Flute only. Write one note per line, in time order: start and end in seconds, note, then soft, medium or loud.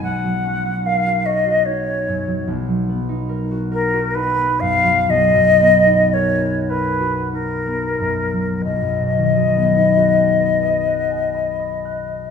0.03 0.88 F#5 loud
0.86 1.27 F5 medium
1.26 1.67 D#5 medium
1.66 2.48 C#5 medium
3.73 4.17 A#4 loud
4.15 4.62 B4 loud
4.60 5.12 F5 loud
5.10 6.15 D#5 loud
6.14 6.71 C#5 medium
6.70 7.32 B4 medium
7.33 8.62 A#4 medium
8.65 12.30 D#5 medium